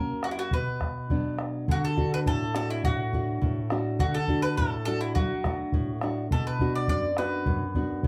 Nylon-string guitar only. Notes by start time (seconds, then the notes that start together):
Already playing: F#2 F#3 A#3 C#4
0.53 B2
1.10 F#3 B3 D4
1.68 D3
1.97 A3 D4 F#4
2.27 A2
2.55 A3 D4 F#4
2.85 A2
3.13 A3 D4 F#4
3.41 A2
3.71 A3 D4 F#4
3.99 D3
4.28 A3 D4 F#4
4.59 A2
4.87 A3 D4 F#4
5.16 F#3
5.45 A3 D4 F#4
5.74 A2
6.02 A3 D4 F#4
6.32 B2
6.61 B3 D4 F#4
6.91 F#2
7.18 B3 D4 F#4
7.46 F#2
7.75 B3 D4 F#4
8.04 F#2